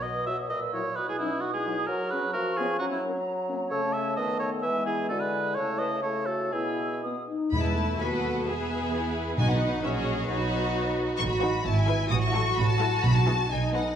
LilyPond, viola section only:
\new Staff \with { instrumentName = "Viola section" } { \time 2/4 \key b \major \tempo 4 = 130 << { r2 | r2 | r2 | r2 |
\key e \major r2 | r2 | r2 | r2 |
e'4 fis'4 | gis'2 | dis'4 cis'4 | dis'2 |
r8 dis'8 r8 e'8 | r8 e'8 r8 e'8 | r8 e'8 r8 dis'8 | } \\ { r2 | r2 | r2 | r2 |
r2 | r2 | r2 | r2 |
gis8 a8 b4 | b2 | b4 fis4 | fis2 |
r8 fis8 r8 e8 | r8 fis8 r8 fis8 | r8 b8 r8 b8 | } >> }